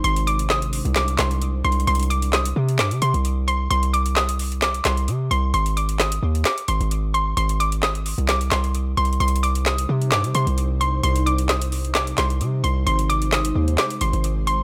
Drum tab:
HH |x--x--x--x--x--x--o--x--x--x--x--x--x-----x-x-x-|x-xxx-x--x--x--x-----x--x--x--x--x--x-----x-----|x--x--x--x--x--x--o--x--x--x--x--x--x-----x-----|x--x--x--x--x--x-----x--x--x--x--x--x-----x-----|
CP |------------x-----------x-----x-----------------|------------x-----------x-----------------------|------------x-----------x-----x-----------------|------------x-----------x-----------------------|
SD |------------o-----------o-----o-----------------|------------o-----------o-----------------------|------------o-----------o-----o-----------------|------------o-----------o-----------------------|

HH |x--x--x--x--x--x--o--x--x--x--x--x--x-----x-x-x-|x-x-x-x--x--x--x-----x--x--x--x--x--x-----x-----|x--x--x--x--x--x--o--x--x--x--x--x--x-----x-----|x--x--x--x--x--x-----x--x--x--x--x--x-----x-----|
CP |------------x-----------x-----x-----------------|------------x-----------x-----------------------|------------x-----------x-----x-----------------|------------x-----------x-----------------------|
SD |------------o-----------o-----o-----------------|------------o-----------o-----------------------|------------o-----------o-----o-----------------|------------o-----------o-----------------------|